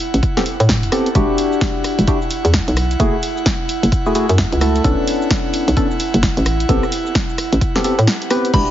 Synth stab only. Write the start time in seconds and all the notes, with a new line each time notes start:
0.37 B3 C4 G4 A4
0.92 B3 C4 G4 A4
1.15 D4 E4 F#4 G4
2.08 D4 E4 F#4 G4
3.00 A3 E4 F#4 G#4
4.06 A3 E4 F#4 G#4
4.15 A3 E4 F#4 G#4
4.61 A3 E4 F#4 A4
4.84 B3 C#4 D4 A4
5.77 B3 C#4 D4 A4
6.69 B3 C4 G4 A4
7.76 B3 C4 G4 A4
7.84 B3 C4 G4 A4
8.31 B3 C4 G4 B4
8.54 D4 E4 F#4 G4